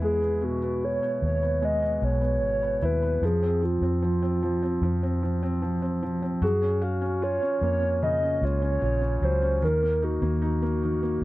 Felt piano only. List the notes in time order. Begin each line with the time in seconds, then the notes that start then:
Already playing: B3 E4
0.02 G#3
0.22 B3
0.41 B2
0.62 B3
1.02 B3
1.43 B3
1.62 G#3
1.82 B3
2.02 B2
2.21 B3
2.63 B3
2.82 E4
3.03 B3
3.23 F3
3.43 C4
3.62 F3
3.83 C4
4.02 F3
4.22 C4
4.43 F3
4.63 C4
4.83 F3
5.03 C4
5.23 F3
5.43 C4
5.62 F3
5.82 C4
6.03 F3
6.22 C4
6.42 F#4
6.62 C#4
6.82 F5
7.01 C#4
7.22 F4
7.42 C#4
7.63 A#3
7.82 C#4
8.03 C#3
8.23 C#4
8.43 F4
8.62 C#4
8.82 F4
9.02 C#4
9.22 F#3
9.42 C#4
9.62 D#3
9.82 A#3
10.02 D#4
10.22 A#3
10.42 D#4
10.62 A#3
10.83 D#3
11.03 A#3